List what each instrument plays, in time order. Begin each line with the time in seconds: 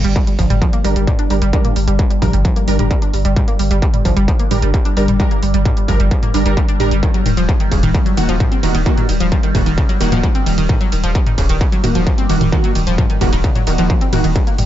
Already playing: synth drone G2 G3, impact
0.04 sub bass G1, synth arpeggio sound G3, closed hi-hat
0.16 synth arpeggio sound G3, kick, closed hi-hat
0.27 synth arpeggio sound G3, closed hi-hat
0.39 sub bass G1, synth arpeggio sound F3, kick, open hi-hat
0.50 sub bass G1, synth arpeggio sound G3, closed hi-hat, mid tom
0.62 synth arpeggio sound F3, kick, closed hi-hat
0.73 synth arpeggio sound A#3, closed hi-hat
0.85 sub bass G1, synth arpeggio sound G3, synth stab G3 D4 A#4, open hi-hat
0.96 sub bass G1, synth arpeggio sound G3, closed hi-hat
1.07 synth arpeggio sound G3, kick, closed hi-hat, mid tom
1.19 synth arpeggio sound D4, closed hi-hat
1.30 sub bass G1, synth arpeggio sound G3, synth stab G3 D4 A#4, open hi-hat
1.42 sub bass G1, synth arpeggio sound G3, closed hi-hat
1.53 synth stab G3 D4 A#4, synth arpeggio sound G3, kick, closed hi-hat
1.65 synth arpeggio sound A#3, closed hi-hat, mid tom
1.76 sub bass G1, synth arpeggio sound G3, open hi-hat
1.88 sub bass G1, synth arpeggio sound G3, closed hi-hat
1.99 synth arpeggio sound G3, kick, closed hi-hat
2.10 synth arpeggio sound G3, closed hi-hat
2.22 sub bass G1, synth arpeggio sound F3, synth stab G3 D4 A#4, kick, open hi-hat, mid tom
2.33 sub bass G1, synth arpeggio sound G3, closed hi-hat
2.45 synth arpeggio sound F3, kick, closed hi-hat
2.56 synth arpeggio sound A#3, closed hi-hat
2.68 sub bass G1, synth arpeggio sound G3, synth stab G3 D4 A#4, open hi-hat
2.79 sub bass G1, synth arpeggio sound G3, synth stab G3 D4 A#4, closed hi-hat, mid tom
2.91 synth arpeggio sound G3, kick, closed hi-hat
3.02 synth arpeggio sound D4, closed hi-hat
3.14 sub bass G1, synth arpeggio sound G3, open hi-hat
3.25 sub bass G1, synth arpeggio sound G3, closed hi-hat
3.36 synth arpeggio sound G3, kick, closed hi-hat, mid tom
3.48 synth arpeggio sound A#3, closed hi-hat
3.59 sub bass G1, synth arpeggio sound G3, open hi-hat
3.71 sub bass G1, synth arpeggio sound G3, closed hi-hat
3.82 synth arpeggio sound G3, kick, closed hi-hat
3.94 synth arpeggio sound G3, closed hi-hat, mid tom
4.05 sub bass G1, synth arpeggio sound F3, kick, open hi-hat
4.17 sub bass G1, synth arpeggio sound G3, closed hi-hat
4.28 synth arpeggio sound F3, kick, closed hi-hat
4.40 synth arpeggio sound A#3, closed hi-hat
4.51 sub bass G1, synth stab G3 D4 A#4, synth arpeggio sound G3, open hi-hat, mid tom
4.62 sub bass G1, synth arpeggio sound G3, closed hi-hat
4.74 synth arpeggio sound G3, kick, closed hi-hat
4.85 synth arpeggio sound D4, closed hi-hat
4.97 sub bass G1, synth arpeggio sound G3, synth stab G3 D4 A#4, open hi-hat
5.08 sub bass G1, synth arpeggio sound G3, closed hi-hat, mid tom
5.20 synth stab G3 D4 A#4, synth arpeggio sound G3, kick, closed hi-hat
5.31 synth arpeggio sound A#3, closed hi-hat
5.43 sub bass G1, synth arpeggio sound G3, open hi-hat
5.54 sub bass G1, synth arpeggio sound G3, closed hi-hat
5.65 synth arpeggio sound G3, kick, closed hi-hat, mid tom
5.77 synth arpeggio sound G3, closed hi-hat
5.88 sub bass G1, synth arpeggio sound F3, synth stab G3 D4 A#4, kick, open hi-hat
6.00 sub bass G1, synth arpeggio sound G3, closed hi-hat
6.11 synth arpeggio sound F3, kick, closed hi-hat
6.23 synth arpeggio sound A#3, closed hi-hat, mid tom
6.34 sub bass G1, synth stab G3 D4 A#4, synth arpeggio sound G3, open hi-hat
6.46 sub bass G1, synth stab G3 D4 A#4, synth arpeggio sound G3, closed hi-hat
6.57 synth arpeggio sound G3, kick, closed hi-hat
6.68 synth arpeggio sound D4, closed hi-hat
6.80 sub bass G1, synth arpeggio sound G3, synth stab G3 D4 A#4, open hi-hat, mid tom
6.91 sub bass G1, synth arpeggio sound G3, closed hi-hat
7.03 synth arpeggio sound D#3, kick, closed hi-hat
7.14 synth arpeggio sound F#3, closed hi-hat
7.26 sub bass D#1, synth arpeggio sound D#3, open hi-hat, mid tom, ride
7.37 sub bass D#1, synth arpeggio sound F3, closed hi-hat
7.49 synth arpeggio sound F3, kick, closed hi-hat
7.60 synth arpeggio sound D#3, closed hi-hat
7.72 sub bass D#1, synth arpeggio sound C#3, kick, open hi-hat, ride
7.83 sub bass D#1, synth arpeggio sound D#3, closed hi-hat, mid tom
7.94 synth arpeggio sound C#3, kick, closed hi-hat
8.06 synth arpeggio sound F#3, closed hi-hat
8.17 sub bass D#1, synth stab D#3 A#3 F#4, synth arpeggio sound D#3, open hi-hat, ride
8.29 sub bass D#1, synth arpeggio sound F3, closed hi-hat
8.40 synth arpeggio sound F3, kick, closed hi-hat, mid tom
8.52 synth arpeggio sound C4, closed hi-hat
8.63 sub bass D#1, synth stab D#3 A#3 F#4, synth arpeggio sound D#3, open hi-hat, ride
8.75 sub bass D#1, synth arpeggio sound D#3, closed hi-hat
8.86 synth arpeggio sound D#3, synth stab D#3 A#3 F#4, kick, closed hi-hat
8.97 synth arpeggio sound F#3, closed hi-hat, mid tom
9.09 sub bass D#1, synth arpeggio sound D#3, open hi-hat, ride
9.20 sub bass D#1, synth arpeggio sound F3, closed hi-hat
9.32 synth arpeggio sound F3, kick, closed hi-hat
9.43 synth arpeggio sound D#3, closed hi-hat
9.55 sub bass D#1, synth arpeggio sound C#3, synth stab D#3 A#3 F#4, kick, open hi-hat, mid tom, ride
9.66 sub bass D#1, synth arpeggio sound D#3, closed hi-hat
9.78 synth arpeggio sound C#3, kick, closed hi-hat
9.89 synth arpeggio sound F#3, closed hi-hat
10.01 sub bass D#1, synth stab D#3 A#3 F#4, synth arpeggio sound D#3, open hi-hat, ride
10.12 sub bass D#1, synth stab D#3 A#3 F#4, synth arpeggio sound F3, closed hi-hat, mid tom
10.23 synth arpeggio sound F3, kick, closed hi-hat
10.35 synth arpeggio sound C4, closed hi-hat
10.46 sub bass D#1, synth arpeggio sound D#3, open hi-hat, ride
10.58 sub bass D#1, synth arpeggio sound D#3, closed hi-hat
10.69 synth arpeggio sound D#3, kick, closed hi-hat, mid tom
10.81 synth arpeggio sound F#3, closed hi-hat
10.92 sub bass D#1, synth arpeggio sound D#3, open hi-hat, ride
11.04 sub bass D#1, synth arpeggio sound F3, closed hi-hat
11.15 synth arpeggio sound F3, kick, closed hi-hat
11.27 synth arpeggio sound D#3, closed hi-hat, mid tom
11.38 sub bass D#1, synth arpeggio sound C#3, kick, open hi-hat, ride
11.49 sub bass D#1, synth arpeggio sound D#3, closed hi-hat
11.61 synth arpeggio sound C#3, kick, closed hi-hat
11.72 synth arpeggio sound F#3, closed hi-hat
11.84 sub bass D#1, synth stab D#3 A#3 F#4, synth arpeggio sound D#3, open hi-hat, mid tom, ride
11.95 sub bass D#1, synth arpeggio sound F3, closed hi-hat
12.07 synth arpeggio sound F3, kick, closed hi-hat
12.18 synth arpeggio sound C4, closed hi-hat
12.29 sub bass D#1, synth arpeggio sound D#3, synth stab D#3 A#3 F#4, open hi-hat, ride
12.41 sub bass D#1, synth arpeggio sound D#3, closed hi-hat, mid tom
12.52 synth stab D#3 A#3 F#4, synth arpeggio sound D#3, kick, closed hi-hat
12.64 synth arpeggio sound F#3, closed hi-hat
12.75 sub bass D#1, synth arpeggio sound D#3, open hi-hat, ride
12.87 sub bass D#1, synth arpeggio sound F3, closed hi-hat
12.98 synth arpeggio sound F3, kick, closed hi-hat, mid tom
13.10 synth arpeggio sound D#3, closed hi-hat
13.21 sub bass D#1, synth arpeggio sound C#3, synth stab D#3 A#3 F#4, kick, open hi-hat, ride
13.33 sub bass D#1, synth arpeggio sound D#3, closed hi-hat
13.44 synth arpeggio sound C#3, kick, closed hi-hat
13.55 synth arpeggio sound F#3, closed hi-hat, mid tom
13.67 sub bass D#1, synth arpeggio sound D#3, synth stab D#3 A#3 F#4, open hi-hat, ride
13.78 sub bass D#1, synth stab D#3 A#3 F#4, synth arpeggio sound F3, closed hi-hat
13.90 synth arpeggio sound F3, kick, closed hi-hat
14.01 synth arpeggio sound C4, closed hi-hat
14.13 sub bass D#1, synth stab D#3 A#3 F#4, synth arpeggio sound D#3, open hi-hat, mid tom, ride
14.24 sub bass D#1, synth arpeggio sound D#3, closed hi-hat
14.36 synth drone G2 G3, synth arpeggio sound G3, kick, closed hi-hat
14.47 synth arpeggio sound A#3, closed hi-hat
14.58 sub bass G1, synth arpeggio sound G3, open hi-hat, mid tom, ride